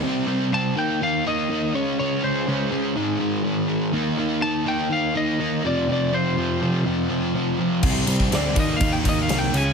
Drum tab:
CC |----------------|----------------|----------------|----------------|
RD |----------------|----------------|----------------|----------------|
SD |----------------|----------------|----------------|----------------|
BD |----------------|----------------|----------------|----------------|

CC |x---------------|
RD |--x-x-x-x-x-x-x-|
SD |----o-------oo--|
BD |o--o--o-o-o-----|